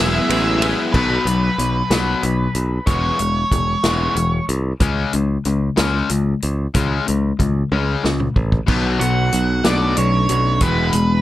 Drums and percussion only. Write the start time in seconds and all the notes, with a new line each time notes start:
0.30 ride
0.62 ride
0.94 kick, crash
1.27 closed hi-hat
1.59 closed hi-hat
1.91 snare, closed hi-hat
2.23 closed hi-hat
2.55 closed hi-hat
2.87 kick, closed hi-hat
3.19 closed hi-hat
3.52 kick, closed hi-hat
3.84 snare, closed hi-hat
4.16 closed hi-hat
4.49 closed hi-hat
4.80 kick, closed hi-hat
5.13 closed hi-hat
5.45 closed hi-hat
5.77 snare, closed hi-hat
6.09 closed hi-hat
6.42 closed hi-hat
6.75 kick, closed hi-hat
7.08 closed hi-hat
7.40 kick, closed hi-hat
7.72 high tom
8.04 snare
8.20 mid tom
8.36 kick
8.52 kick
8.68 kick, crash
9.01 closed hi-hat
9.32 closed hi-hat
9.64 snare, closed hi-hat
9.97 closed hi-hat
10.29 closed hi-hat
10.61 kick, closed hi-hat
10.93 closed hi-hat